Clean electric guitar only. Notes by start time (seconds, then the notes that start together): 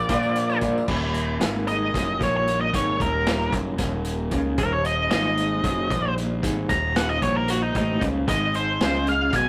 0.08 F3 A#3 D4 F4
0.61 F3 A#3 D4 F4
1.40 G#2
1.93 F#2
2.19 A#2
2.73 G#2
3.00 D#2
3.52 F#2
3.78 D#2
4.31 C#3
4.58 D#2
5.11 G#2
5.64 F#2
5.90 A#2
6.43 G#2
6.70 D#2
7.23 A#2
7.75 A2
8.01 C#3
8.28 G#2
8.81 C#3
9.34 B2